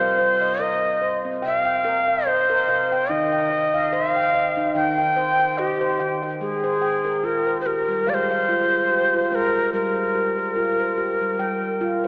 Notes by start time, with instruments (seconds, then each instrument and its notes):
Already playing: handpan C3 C4, native american-style wooden flute C5
0.01 handpan F5
0.18 handpan C5
0.41 handpan D#5
0.60 handpan A#4, native american-style wooden flute D#5
1.02 handpan C5
1.25 handpan C4
1.42 handpan C3 G5, native american-style wooden flute F5
1.65 handpan G5
1.85 handpan A#4
2.08 handpan F5
2.27 native american-style wooden flute C5, handpan D#5
2.50 handpan A#4
2.68 handpan C3 F5
2.92 handpan G5
3.09 handpan D#3 D#4, native american-style wooden flute D#5
3.32 handpan G5
3.50 handpan D#5
3.74 handpan F5
3.93 handpan C5, native american-style wooden flute F5
4.16 handpan G5
4.34 handpan D#5
4.57 handpan D#4
4.75 handpan D#3 G5, native american-style wooden flute G5
4.98 handpan G5
5.16 handpan C5
5.40 handpan G5
5.58 native american-style wooden flute G4, handpan D#5
5.81 handpan C5
6.00 handpan D#3 G5
6.23 handpan G5
6.41 handpan G#3, native american-style wooden flute G#4
6.64 handpan C5
6.82 handpan G5
7.05 handpan A#4
7.23 handpan F4, native american-style wooden flute A#4
7.47 handpan C5
7.61 native american-style wooden flute C5
7.66 handpan G4, native american-style wooden flute A#4
7.88 handpan G3
8.07 handpan G#3 F5, native american-style wooden flute D5
8.14 native american-style wooden flute C5
8.31 handpan F5
8.49 handpan F4
8.71 handpan C5
8.90 handpan G4
9.14 handpan F4
9.31 handpan G#3 C5, native american-style wooden flute C5
9.35 native american-style wooden flute A#4
9.73 handpan G3, native american-style wooden flute A#4
9.96 handpan C5
10.15 handpan G4
10.38 handpan A#4
10.56 handpan F4
10.80 handpan C5
10.98 handpan G4
11.21 handpan G3
11.39 handpan G3 G5
11.81 handpan F4
12.04 handpan C5